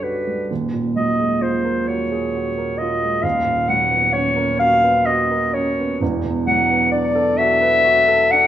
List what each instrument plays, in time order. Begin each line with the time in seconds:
Already playing: grand piano B1 D3 G3 D4 F#4 G4 A4
0.04 grand piano F#4, clarinet B4
0.27 grand piano G3
0.50 grand piano D#1 D#2
0.73 grand piano A#2
0.96 grand piano F#3, clarinet D#5
1.19 grand piano G#3
1.41 grand piano F4, clarinet C5
1.65 grand piano A#4
1.88 grand piano F#4, clarinet C#5
2.12 grand piano G#4
2.35 grand piano F#4
2.58 grand piano A#4
2.78 grand piano F4, clarinet D#5
3.02 grand piano G#3
3.22 grand piano D#1 D#2, clarinet F5
3.46 grand piano A#2
3.68 grand piano F#3, clarinet F#5
3.91 grand piano B3
4.13 grand piano C#4, clarinet C#5
4.36 grand piano A#4
4.60 grand piano F#4, clarinet F5
4.84 grand piano B4
5.06 grand piano F#4, clarinet D#5
5.31 grand piano A#4
5.54 grand piano C#4, clarinet C#5
5.79 grand piano B3
6.01 grand piano E1 E2
6.25 grand piano B2
6.47 grand piano F#3, clarinet F#5
6.70 grand piano B3
6.92 grand piano D4, clarinet D5
7.15 grand piano A4
7.38 grand piano F#4, clarinet E5
7.61 grand piano B4
7.84 grand piano F#4
8.08 grand piano A4
8.31 grand piano D4, clarinet F#5